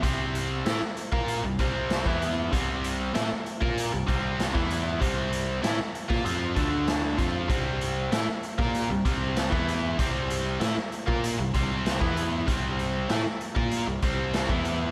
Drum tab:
HH |x-x-x-x-x-x-x-x-|x-x-x-x-x-x-x-x-|x-x-x-x-x-x-x-x-|x-x-x-x-x-x-x-x-|
SD |----o-------o---|----o-------o---|----o--o----o---|----o--o----o---|
BD |o------o--o--o--|o------o--o--o--|o------o--o---o-|o------o--o--o--|

HH |x-x-x-x-x-x-x-x-|x-x-x-x-x-x-x-x-|
SD |----o-------o---|----o-------o---|
BD |o------o--o--o--|o------o--o--o--|